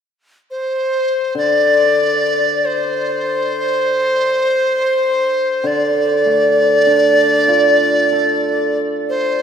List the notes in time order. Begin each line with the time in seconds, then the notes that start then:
0.51 C5
1.35 D3 D5
2.66 C5
5.64 D3 D5
6.25 A3
6.87 D4
7.48 F4
8.12 A4
9.09 C5